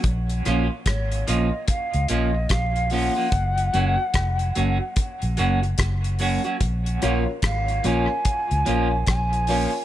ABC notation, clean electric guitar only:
X:1
M:4/4
L:1/16
Q:"Swing 16ths" 1/4=73
K:Bbm
V:1 name="Clean electric guitar"
z2 [F,B,DF] z3 [F,B,DF] z3 [F,B,DF] z3 [F,B,DF] [F,B,DF] | z2 [G,B,DG] z3 [G,B,DG] z3 [G,B,DG] z3 [G,B,DG] [G,B,DG] | z2 [F,B,DF] z3 [F,B,DF] z3 [F,B,DF] z3 [F,B,DF] z |]